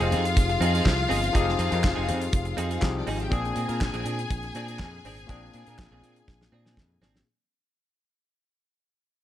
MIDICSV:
0, 0, Header, 1, 7, 480
1, 0, Start_track
1, 0, Tempo, 493016
1, 1312, Time_signature, 4, 2, 24, 8
1, 8987, End_track
2, 0, Start_track
2, 0, Title_t, "String section"
2, 0, Program_c, 0, 48
2, 0, Note_on_c, 0, 65, 82
2, 0, Note_on_c, 0, 77, 109
2, 2828, Note_off_c, 0, 65, 0
2, 2830, Note_off_c, 0, 77, 0
2, 2909, Note_on_c, 0, 62, 54
2, 2909, Note_on_c, 0, 74, 65
2, 2989, Note_off_c, 0, 62, 0
2, 2989, Note_off_c, 0, 74, 0
2, 2996, Note_on_c, 0, 63, 69
2, 3000, Note_on_c, 0, 75, 69
2, 3073, Note_off_c, 0, 63, 0
2, 3075, Note_off_c, 0, 75, 0
2, 3076, Note_on_c, 0, 65, 74
2, 3080, Note_on_c, 0, 77, 80
2, 3150, Note_on_c, 0, 79, 83
2, 3152, Note_off_c, 0, 65, 0
2, 3154, Note_on_c, 0, 67, 72
2, 3155, Note_off_c, 0, 77, 0
2, 3230, Note_off_c, 0, 79, 0
2, 3230, Note_on_c, 0, 68, 93
2, 3230, Note_on_c, 0, 80, 102
2, 3231, Note_off_c, 0, 67, 0
2, 6794, Note_off_c, 0, 68, 0
2, 6794, Note_off_c, 0, 80, 0
2, 8987, End_track
3, 0, Start_track
3, 0, Title_t, "Clean electric guitar"
3, 0, Program_c, 1, 27
3, 4, Note_on_c, 1, 68, 87
3, 14, Note_on_c, 1, 63, 78
3, 20, Note_on_c, 1, 60, 64
3, 100, Note_off_c, 1, 60, 0
3, 108, Note_off_c, 1, 63, 0
3, 110, Note_off_c, 1, 68, 0
3, 112, Note_on_c, 1, 60, 66
3, 119, Note_on_c, 1, 63, 75
3, 122, Note_on_c, 1, 68, 86
3, 236, Note_off_c, 1, 68, 0
3, 244, Note_off_c, 1, 63, 0
3, 273, Note_off_c, 1, 60, 0
3, 591, Note_on_c, 1, 60, 84
3, 602, Note_on_c, 1, 63, 87
3, 608, Note_on_c, 1, 68, 90
3, 713, Note_off_c, 1, 68, 0
3, 717, Note_off_c, 1, 63, 0
3, 724, Note_off_c, 1, 60, 0
3, 725, Note_on_c, 1, 68, 84
3, 728, Note_on_c, 1, 63, 63
3, 735, Note_on_c, 1, 60, 58
3, 878, Note_off_c, 1, 68, 0
3, 879, Note_off_c, 1, 63, 0
3, 883, Note_off_c, 1, 60, 0
3, 1060, Note_on_c, 1, 60, 94
3, 1069, Note_on_c, 1, 63, 95
3, 1073, Note_on_c, 1, 68, 102
3, 1181, Note_off_c, 1, 68, 0
3, 1187, Note_off_c, 1, 63, 0
3, 1261, Note_off_c, 1, 60, 0
3, 1306, Note_on_c, 1, 60, 92
3, 1315, Note_on_c, 1, 63, 101
3, 1317, Note_on_c, 1, 68, 98
3, 1416, Note_off_c, 1, 68, 0
3, 1427, Note_off_c, 1, 63, 0
3, 1504, Note_off_c, 1, 60, 0
3, 1543, Note_on_c, 1, 60, 69
3, 1554, Note_on_c, 1, 63, 70
3, 1558, Note_on_c, 1, 68, 81
3, 1664, Note_off_c, 1, 63, 0
3, 1665, Note_off_c, 1, 68, 0
3, 1667, Note_off_c, 1, 60, 0
3, 1669, Note_on_c, 1, 70, 64
3, 1675, Note_on_c, 1, 63, 64
3, 1678, Note_on_c, 1, 60, 52
3, 1766, Note_off_c, 1, 60, 0
3, 1772, Note_off_c, 1, 63, 0
3, 1786, Note_off_c, 1, 70, 0
3, 1904, Note_on_c, 1, 68, 76
3, 1912, Note_on_c, 1, 63, 77
3, 1915, Note_on_c, 1, 60, 67
3, 2009, Note_off_c, 1, 60, 0
3, 2016, Note_off_c, 1, 63, 0
3, 2021, Note_on_c, 1, 60, 69
3, 2022, Note_off_c, 1, 68, 0
3, 2027, Note_on_c, 1, 63, 78
3, 2034, Note_on_c, 1, 68, 70
3, 2142, Note_off_c, 1, 68, 0
3, 2155, Note_off_c, 1, 63, 0
3, 2185, Note_off_c, 1, 60, 0
3, 2502, Note_on_c, 1, 60, 85
3, 2509, Note_on_c, 1, 63, 93
3, 2515, Note_on_c, 1, 68, 93
3, 2623, Note_off_c, 1, 68, 0
3, 2631, Note_off_c, 1, 63, 0
3, 2635, Note_on_c, 1, 68, 83
3, 2637, Note_off_c, 1, 60, 0
3, 2643, Note_on_c, 1, 63, 66
3, 2648, Note_on_c, 1, 60, 58
3, 2791, Note_off_c, 1, 68, 0
3, 2795, Note_off_c, 1, 63, 0
3, 2798, Note_off_c, 1, 60, 0
3, 2987, Note_on_c, 1, 60, 89
3, 2996, Note_on_c, 1, 63, 92
3, 3004, Note_on_c, 1, 68, 105
3, 3107, Note_off_c, 1, 68, 0
3, 3116, Note_off_c, 1, 63, 0
3, 3183, Note_off_c, 1, 60, 0
3, 3223, Note_on_c, 1, 60, 81
3, 3232, Note_on_c, 1, 62, 95
3, 3238, Note_on_c, 1, 68, 116
3, 3345, Note_off_c, 1, 68, 0
3, 3354, Note_off_c, 1, 62, 0
3, 3421, Note_off_c, 1, 60, 0
3, 3462, Note_on_c, 1, 60, 61
3, 3471, Note_on_c, 1, 62, 72
3, 3476, Note_on_c, 1, 68, 71
3, 3582, Note_off_c, 1, 62, 0
3, 3585, Note_off_c, 1, 68, 0
3, 3588, Note_off_c, 1, 60, 0
3, 3588, Note_on_c, 1, 70, 68
3, 3594, Note_on_c, 1, 62, 58
3, 3599, Note_on_c, 1, 60, 52
3, 3694, Note_off_c, 1, 60, 0
3, 3697, Note_off_c, 1, 62, 0
3, 3711, Note_off_c, 1, 70, 0
3, 3834, Note_on_c, 1, 68, 78
3, 3841, Note_on_c, 1, 62, 74
3, 3847, Note_on_c, 1, 60, 70
3, 3934, Note_off_c, 1, 60, 0
3, 3941, Note_off_c, 1, 62, 0
3, 3945, Note_on_c, 1, 60, 56
3, 3949, Note_off_c, 1, 68, 0
3, 3953, Note_on_c, 1, 62, 68
3, 3960, Note_on_c, 1, 68, 67
3, 4075, Note_off_c, 1, 68, 0
3, 4082, Note_off_c, 1, 62, 0
3, 4107, Note_off_c, 1, 60, 0
3, 4436, Note_on_c, 1, 60, 87
3, 4444, Note_on_c, 1, 62, 90
3, 4449, Note_on_c, 1, 68, 88
3, 4554, Note_off_c, 1, 68, 0
3, 4561, Note_off_c, 1, 62, 0
3, 4564, Note_off_c, 1, 60, 0
3, 4565, Note_on_c, 1, 68, 69
3, 4573, Note_on_c, 1, 62, 67
3, 4576, Note_on_c, 1, 60, 61
3, 4716, Note_off_c, 1, 68, 0
3, 4719, Note_off_c, 1, 62, 0
3, 4721, Note_off_c, 1, 60, 0
3, 4920, Note_on_c, 1, 60, 89
3, 4927, Note_on_c, 1, 62, 107
3, 4934, Note_on_c, 1, 68, 104
3, 5035, Note_off_c, 1, 68, 0
3, 5043, Note_off_c, 1, 62, 0
3, 5109, Note_off_c, 1, 60, 0
3, 5160, Note_on_c, 1, 60, 86
3, 5166, Note_on_c, 1, 62, 95
3, 5173, Note_on_c, 1, 68, 99
3, 5274, Note_off_c, 1, 68, 0
3, 5283, Note_off_c, 1, 62, 0
3, 5349, Note_off_c, 1, 60, 0
3, 5402, Note_on_c, 1, 60, 67
3, 5406, Note_on_c, 1, 62, 70
3, 5417, Note_on_c, 1, 68, 83
3, 5525, Note_off_c, 1, 68, 0
3, 5527, Note_off_c, 1, 62, 0
3, 5529, Note_off_c, 1, 60, 0
3, 5529, Note_on_c, 1, 70, 62
3, 5538, Note_on_c, 1, 62, 64
3, 5540, Note_on_c, 1, 60, 51
3, 5623, Note_off_c, 1, 60, 0
3, 5633, Note_off_c, 1, 62, 0
3, 5642, Note_off_c, 1, 70, 0
3, 5762, Note_on_c, 1, 68, 85
3, 5768, Note_on_c, 1, 62, 72
3, 5774, Note_on_c, 1, 60, 71
3, 5863, Note_off_c, 1, 60, 0
3, 5864, Note_off_c, 1, 62, 0
3, 5871, Note_off_c, 1, 68, 0
3, 5875, Note_on_c, 1, 60, 67
3, 5875, Note_on_c, 1, 62, 67
3, 5883, Note_on_c, 1, 68, 74
3, 5996, Note_off_c, 1, 68, 0
3, 6004, Note_off_c, 1, 62, 0
3, 6033, Note_off_c, 1, 60, 0
3, 6350, Note_on_c, 1, 60, 73
3, 6360, Note_on_c, 1, 62, 74
3, 6366, Note_on_c, 1, 68, 85
3, 6467, Note_off_c, 1, 68, 0
3, 6471, Note_off_c, 1, 62, 0
3, 6476, Note_off_c, 1, 60, 0
3, 6479, Note_on_c, 1, 68, 68
3, 6483, Note_on_c, 1, 62, 59
3, 6487, Note_on_c, 1, 60, 60
3, 6634, Note_off_c, 1, 68, 0
3, 6636, Note_off_c, 1, 62, 0
3, 6638, Note_off_c, 1, 60, 0
3, 6831, Note_on_c, 1, 60, 100
3, 6839, Note_on_c, 1, 62, 96
3, 6844, Note_on_c, 1, 68, 104
3, 6951, Note_off_c, 1, 68, 0
3, 6961, Note_off_c, 1, 62, 0
3, 7027, Note_off_c, 1, 60, 0
3, 8987, End_track
4, 0, Start_track
4, 0, Title_t, "Tine electric piano"
4, 0, Program_c, 2, 4
4, 0, Control_c, 2, 64, 127
4, 0, Note_on_c, 2, 53, 83
4, 0, Note_on_c, 2, 60, 75
4, 0, Note_on_c, 2, 63, 69
4, 0, Note_on_c, 2, 67, 76
4, 0, Note_on_c, 2, 68, 86
4, 1265, Note_off_c, 2, 53, 0
4, 1269, Note_off_c, 2, 60, 0
4, 1273, Note_off_c, 2, 63, 0
4, 1277, Note_off_c, 2, 67, 0
4, 1282, Note_off_c, 2, 68, 0
4, 1290, Note_on_c, 2, 53, 84
4, 1301, Note_on_c, 2, 60, 71
4, 1307, Note_on_c, 2, 63, 71
4, 1317, Note_on_c, 2, 67, 74
4, 1323, Note_on_c, 2, 68, 89
4, 2709, Note_off_c, 2, 53, 0
4, 2715, Note_off_c, 2, 60, 0
4, 2718, Note_off_c, 2, 63, 0
4, 2723, Note_off_c, 2, 67, 0
4, 2726, Note_off_c, 2, 68, 0
4, 2734, Note_on_c, 2, 53, 58
4, 2741, Note_on_c, 2, 60, 56
4, 2743, Note_on_c, 2, 63, 57
4, 2749, Note_on_c, 2, 67, 53
4, 2753, Note_on_c, 2, 68, 61
4, 3212, Note_off_c, 2, 60, 0
4, 3212, Note_on_c, 2, 46, 87
4, 3221, Note_off_c, 2, 53, 0
4, 3221, Note_on_c, 2, 58, 73
4, 3224, Note_on_c, 2, 60, 76
4, 3226, Note_off_c, 2, 63, 0
4, 3228, Note_off_c, 2, 67, 0
4, 3228, Note_off_c, 2, 68, 0
4, 3232, Note_on_c, 2, 62, 72
4, 3240, Control_c, 2, 64, 0
4, 3240, Note_on_c, 2, 68, 98
4, 3400, Control_c, 2, 64, 127
4, 5102, Note_off_c, 2, 46, 0
4, 5106, Note_off_c, 2, 58, 0
4, 5108, Note_off_c, 2, 60, 0
4, 5112, Note_off_c, 2, 62, 0
4, 5116, Note_off_c, 2, 68, 0
4, 5129, Note_on_c, 2, 46, 81
4, 5136, Note_on_c, 2, 58, 72
4, 5142, Note_on_c, 2, 60, 67
4, 5152, Note_on_c, 2, 62, 78
4, 5160, Note_on_c, 2, 68, 88
4, 7024, Note_off_c, 2, 46, 0
4, 7028, Note_off_c, 2, 58, 0
4, 7031, Note_off_c, 2, 60, 0
4, 7036, Note_off_c, 2, 62, 0
4, 7040, Note_off_c, 2, 68, 0
4, 7087, Control_c, 2, 64, 0
4, 8987, End_track
5, 0, Start_track
5, 0, Title_t, "Fingered electric bass"
5, 0, Program_c, 3, 33
5, 1, Note_on_c, 3, 29, 96
5, 111, Note_on_c, 3, 41, 95
5, 125, Note_off_c, 3, 29, 0
5, 356, Note_on_c, 3, 29, 98
5, 371, Note_off_c, 3, 41, 0
5, 542, Note_off_c, 3, 29, 0
5, 587, Note_on_c, 3, 41, 98
5, 776, Note_off_c, 3, 41, 0
5, 836, Note_on_c, 3, 36, 110
5, 1021, Note_off_c, 3, 36, 0
5, 1067, Note_on_c, 3, 31, 98
5, 1255, Note_off_c, 3, 31, 0
5, 1312, Note_on_c, 3, 29, 101
5, 1498, Note_off_c, 3, 29, 0
5, 1545, Note_on_c, 3, 41, 101
5, 1646, Note_off_c, 3, 41, 0
5, 1675, Note_on_c, 3, 41, 106
5, 1764, Note_off_c, 3, 41, 0
5, 1794, Note_on_c, 3, 29, 84
5, 1891, Note_off_c, 3, 29, 0
5, 1919, Note_on_c, 3, 29, 99
5, 2028, Note_on_c, 3, 41, 99
5, 2043, Note_off_c, 3, 29, 0
5, 2216, Note_off_c, 3, 41, 0
5, 2270, Note_on_c, 3, 29, 102
5, 2456, Note_off_c, 3, 29, 0
5, 2508, Note_on_c, 3, 41, 115
5, 2695, Note_off_c, 3, 41, 0
5, 2747, Note_on_c, 3, 36, 99
5, 2934, Note_off_c, 3, 36, 0
5, 2991, Note_on_c, 3, 32, 98
5, 3177, Note_off_c, 3, 32, 0
5, 3232, Note_on_c, 3, 34, 108
5, 3417, Note_off_c, 3, 34, 0
5, 3468, Note_on_c, 3, 46, 97
5, 3567, Note_off_c, 3, 46, 0
5, 3595, Note_on_c, 3, 46, 104
5, 3683, Note_off_c, 3, 46, 0
5, 3707, Note_on_c, 3, 34, 88
5, 3807, Note_off_c, 3, 34, 0
5, 3832, Note_on_c, 3, 34, 87
5, 3921, Note_off_c, 3, 34, 0
5, 3943, Note_on_c, 3, 46, 105
5, 4132, Note_off_c, 3, 46, 0
5, 4192, Note_on_c, 3, 34, 99
5, 4377, Note_off_c, 3, 34, 0
5, 4422, Note_on_c, 3, 46, 103
5, 4669, Note_on_c, 3, 41, 83
5, 4684, Note_off_c, 3, 46, 0
5, 4856, Note_off_c, 3, 41, 0
5, 4907, Note_on_c, 3, 32, 85
5, 5095, Note_off_c, 3, 32, 0
5, 5156, Note_on_c, 3, 34, 105
5, 5340, Note_off_c, 3, 34, 0
5, 5394, Note_on_c, 3, 46, 99
5, 5491, Note_off_c, 3, 46, 0
5, 5522, Note_on_c, 3, 46, 90
5, 5608, Note_off_c, 3, 46, 0
5, 5634, Note_on_c, 3, 34, 99
5, 5731, Note_off_c, 3, 34, 0
5, 5755, Note_on_c, 3, 34, 91
5, 5844, Note_off_c, 3, 34, 0
5, 5860, Note_on_c, 3, 46, 93
5, 6051, Note_off_c, 3, 46, 0
5, 6112, Note_on_c, 3, 34, 86
5, 6299, Note_off_c, 3, 34, 0
5, 6348, Note_on_c, 3, 46, 101
5, 6593, Note_on_c, 3, 41, 82
5, 6607, Note_off_c, 3, 46, 0
5, 6779, Note_off_c, 3, 41, 0
5, 6826, Note_on_c, 3, 32, 88
5, 7016, Note_off_c, 3, 32, 0
5, 8987, End_track
6, 0, Start_track
6, 0, Title_t, "Muted clean electric guitar strokes"
6, 247, Note_on_c, 9, 29, 46
6, 345, Note_off_c, 9, 29, 0
6, 361, Note_on_c, 9, 29, 41
6, 459, Note_off_c, 9, 29, 0
6, 482, Note_on_c, 9, 29, 44
6, 580, Note_off_c, 9, 29, 0
6, 955, Note_on_c, 9, 29, 39
6, 1053, Note_off_c, 9, 29, 0
6, 1192, Note_on_c, 9, 29, 49
6, 1290, Note_off_c, 9, 29, 0
6, 1428, Note_on_c, 9, 29, 54
6, 1525, Note_off_c, 9, 29, 0
6, 1778, Note_on_c, 9, 29, 41
6, 1875, Note_off_c, 9, 29, 0
6, 2153, Note_on_c, 9, 29, 46
6, 2251, Note_off_c, 9, 29, 0
6, 2263, Note_on_c, 9, 29, 53
6, 2360, Note_off_c, 9, 29, 0
6, 2391, Note_on_c, 9, 29, 47
6, 2489, Note_off_c, 9, 29, 0
6, 2874, Note_on_c, 9, 29, 47
6, 2971, Note_off_c, 9, 29, 0
6, 3119, Note_on_c, 9, 29, 43
6, 3216, Note_off_c, 9, 29, 0
6, 3357, Note_on_c, 9, 29, 45
6, 3454, Note_off_c, 9, 29, 0
6, 3706, Note_on_c, 9, 29, 50
6, 3803, Note_off_c, 9, 29, 0
6, 4087, Note_on_c, 9, 29, 55
6, 4184, Note_off_c, 9, 29, 0
6, 4196, Note_on_c, 9, 29, 35
6, 4293, Note_off_c, 9, 29, 0
6, 4325, Note_on_c, 9, 29, 45
6, 4423, Note_off_c, 9, 29, 0
6, 4813, Note_on_c, 9, 29, 36
6, 4910, Note_off_c, 9, 29, 0
6, 5047, Note_on_c, 9, 29, 53
6, 5144, Note_off_c, 9, 29, 0
6, 5286, Note_on_c, 9, 29, 52
6, 5383, Note_off_c, 9, 29, 0
6, 5634, Note_on_c, 9, 29, 38
6, 5732, Note_off_c, 9, 29, 0
6, 6008, Note_on_c, 9, 29, 51
6, 6105, Note_off_c, 9, 29, 0
6, 6121, Note_on_c, 9, 29, 40
6, 6219, Note_off_c, 9, 29, 0
6, 6243, Note_on_c, 9, 29, 45
6, 6340, Note_off_c, 9, 29, 0
6, 6718, Note_on_c, 9, 29, 41
6, 6815, Note_off_c, 9, 29, 0
6, 6963, Note_on_c, 9, 29, 44
6, 7060, Note_off_c, 9, 29, 0
6, 8987, End_track
7, 0, Start_track
7, 0, Title_t, "Drums"
7, 5, Note_on_c, 9, 42, 37
7, 103, Note_off_c, 9, 42, 0
7, 118, Note_on_c, 9, 42, 62
7, 215, Note_off_c, 9, 42, 0
7, 246, Note_on_c, 9, 42, 51
7, 344, Note_off_c, 9, 42, 0
7, 358, Note_on_c, 9, 36, 116
7, 359, Note_on_c, 9, 42, 99
7, 455, Note_off_c, 9, 36, 0
7, 457, Note_off_c, 9, 42, 0
7, 481, Note_on_c, 9, 42, 36
7, 578, Note_off_c, 9, 42, 0
7, 601, Note_on_c, 9, 42, 65
7, 699, Note_off_c, 9, 42, 0
7, 729, Note_on_c, 9, 42, 52
7, 826, Note_off_c, 9, 42, 0
7, 834, Note_on_c, 9, 36, 100
7, 837, Note_on_c, 9, 39, 73
7, 844, Note_on_c, 9, 38, 102
7, 931, Note_off_c, 9, 36, 0
7, 935, Note_off_c, 9, 39, 0
7, 942, Note_off_c, 9, 38, 0
7, 1081, Note_on_c, 9, 46, 67
7, 1178, Note_off_c, 9, 46, 0
7, 1206, Note_on_c, 9, 42, 51
7, 1303, Note_off_c, 9, 42, 0
7, 1314, Note_on_c, 9, 36, 104
7, 1317, Note_on_c, 9, 42, 77
7, 1411, Note_off_c, 9, 36, 0
7, 1414, Note_off_c, 9, 42, 0
7, 1453, Note_on_c, 9, 38, 36
7, 1547, Note_on_c, 9, 42, 76
7, 1550, Note_off_c, 9, 38, 0
7, 1644, Note_off_c, 9, 42, 0
7, 1675, Note_on_c, 9, 42, 51
7, 1772, Note_off_c, 9, 42, 0
7, 1792, Note_on_c, 9, 36, 120
7, 1792, Note_on_c, 9, 39, 100
7, 1798, Note_on_c, 9, 38, 127
7, 1889, Note_off_c, 9, 36, 0
7, 1889, Note_off_c, 9, 39, 0
7, 1896, Note_off_c, 9, 38, 0
7, 2031, Note_on_c, 9, 42, 67
7, 2128, Note_off_c, 9, 42, 0
7, 2157, Note_on_c, 9, 42, 54
7, 2254, Note_off_c, 9, 42, 0
7, 2267, Note_on_c, 9, 42, 101
7, 2270, Note_on_c, 9, 36, 127
7, 2365, Note_off_c, 9, 42, 0
7, 2367, Note_off_c, 9, 36, 0
7, 2386, Note_on_c, 9, 42, 35
7, 2484, Note_off_c, 9, 42, 0
7, 2510, Note_on_c, 9, 42, 67
7, 2607, Note_off_c, 9, 42, 0
7, 2637, Note_on_c, 9, 42, 49
7, 2734, Note_off_c, 9, 42, 0
7, 2746, Note_on_c, 9, 39, 89
7, 2747, Note_on_c, 9, 36, 104
7, 2753, Note_on_c, 9, 38, 104
7, 2844, Note_off_c, 9, 39, 0
7, 2845, Note_off_c, 9, 36, 0
7, 2851, Note_off_c, 9, 38, 0
7, 2990, Note_on_c, 9, 46, 64
7, 3088, Note_off_c, 9, 46, 0
7, 3115, Note_on_c, 9, 42, 46
7, 3212, Note_off_c, 9, 42, 0
7, 3229, Note_on_c, 9, 42, 64
7, 3230, Note_on_c, 9, 36, 105
7, 3326, Note_off_c, 9, 42, 0
7, 3327, Note_off_c, 9, 36, 0
7, 3361, Note_on_c, 9, 42, 38
7, 3458, Note_off_c, 9, 42, 0
7, 3463, Note_on_c, 9, 42, 74
7, 3561, Note_off_c, 9, 42, 0
7, 3592, Note_on_c, 9, 42, 51
7, 3689, Note_off_c, 9, 42, 0
7, 3710, Note_on_c, 9, 36, 122
7, 3712, Note_on_c, 9, 39, 95
7, 3718, Note_on_c, 9, 38, 118
7, 3807, Note_off_c, 9, 36, 0
7, 3809, Note_off_c, 9, 39, 0
7, 3816, Note_off_c, 9, 38, 0
7, 3833, Note_on_c, 9, 42, 37
7, 3930, Note_off_c, 9, 42, 0
7, 3949, Note_on_c, 9, 42, 68
7, 4046, Note_off_c, 9, 42, 0
7, 4078, Note_on_c, 9, 42, 56
7, 4176, Note_off_c, 9, 42, 0
7, 4190, Note_on_c, 9, 42, 92
7, 4192, Note_on_c, 9, 36, 113
7, 4288, Note_off_c, 9, 42, 0
7, 4289, Note_off_c, 9, 36, 0
7, 4311, Note_on_c, 9, 42, 38
7, 4408, Note_off_c, 9, 42, 0
7, 4429, Note_on_c, 9, 42, 69
7, 4526, Note_off_c, 9, 42, 0
7, 4559, Note_on_c, 9, 42, 53
7, 4656, Note_off_c, 9, 42, 0
7, 4665, Note_on_c, 9, 39, 71
7, 4668, Note_on_c, 9, 36, 107
7, 4671, Note_on_c, 9, 38, 93
7, 4762, Note_off_c, 9, 39, 0
7, 4765, Note_off_c, 9, 36, 0
7, 4769, Note_off_c, 9, 38, 0
7, 4916, Note_on_c, 9, 46, 63
7, 5013, Note_off_c, 9, 46, 0
7, 5044, Note_on_c, 9, 42, 50
7, 5141, Note_off_c, 9, 42, 0
7, 5150, Note_on_c, 9, 42, 68
7, 5152, Note_on_c, 9, 36, 99
7, 5247, Note_off_c, 9, 42, 0
7, 5250, Note_off_c, 9, 36, 0
7, 5390, Note_on_c, 9, 42, 71
7, 5487, Note_off_c, 9, 42, 0
7, 5516, Note_on_c, 9, 42, 56
7, 5614, Note_off_c, 9, 42, 0
7, 5634, Note_on_c, 9, 36, 125
7, 5635, Note_on_c, 9, 39, 99
7, 5642, Note_on_c, 9, 38, 119
7, 5731, Note_off_c, 9, 36, 0
7, 5733, Note_off_c, 9, 39, 0
7, 5739, Note_off_c, 9, 38, 0
7, 5876, Note_on_c, 9, 42, 66
7, 5973, Note_off_c, 9, 42, 0
7, 6000, Note_on_c, 9, 42, 51
7, 6098, Note_off_c, 9, 42, 0
7, 6114, Note_on_c, 9, 36, 125
7, 6116, Note_on_c, 9, 38, 66
7, 6211, Note_off_c, 9, 36, 0
7, 6213, Note_off_c, 9, 38, 0
7, 6248, Note_on_c, 9, 38, 60
7, 6345, Note_off_c, 9, 38, 0
7, 6487, Note_on_c, 9, 38, 74
7, 6584, Note_off_c, 9, 38, 0
7, 6593, Note_on_c, 9, 36, 101
7, 6600, Note_on_c, 9, 38, 84
7, 6690, Note_off_c, 9, 36, 0
7, 6697, Note_off_c, 9, 38, 0
7, 6840, Note_on_c, 9, 38, 99
7, 6937, Note_off_c, 9, 38, 0
7, 6968, Note_on_c, 9, 38, 93
7, 7065, Note_off_c, 9, 38, 0
7, 8987, End_track
0, 0, End_of_file